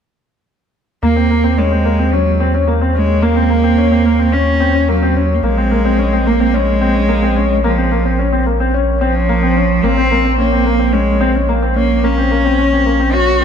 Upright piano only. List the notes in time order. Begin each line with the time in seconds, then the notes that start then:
1.03 A#3
1.16 C4
1.30 A#3
1.44 C4
1.58 C#4
1.72 C4
1.85 A#3
1.99 C4
2.13 C#4
2.40 C4
2.54 C#4
2.67 A#3
2.81 C4
2.94 C#4
3.22 A#3
3.36 C4
3.50 A#3
3.64 C4
3.78 C#4
3.91 C4
4.05 A#3
4.19 C4
4.33 C#4
4.60 C4
4.75 C#4
4.89 A#3
5.03 C4
5.16 C#4
5.44 A#3
5.57 C4
5.71 A#3
5.85 C4
5.99 C#4
6.13 C4
6.27 A#3
6.40 C4
6.54 C#4
6.81 C4
6.95 C#4
7.09 A#3
7.23 C4
7.36 C#4
7.64 A#3
7.78 C4
7.92 A#3
8.05 C4
8.19 C#4
8.32 C4
8.46 A#3
8.60 C4
8.74 C#4
9.01 C4
9.15 C#4
9.29 A#3
9.43 C4
9.57 C#4
9.84 A#3
9.97 C4
10.11 A#3
10.25 C4
10.38 C#4
10.52 C4
10.66 A#3
10.79 C4
10.93 C#4
11.21 C4
11.35 C#4
11.49 A#3
11.62 C4
11.76 C#4
12.04 A#3
12.18 C4
12.31 A#3
12.45 C4
12.59 C#4
12.73 C4
12.86 A#3
13.00 C4
13.13 C#4
13.41 C4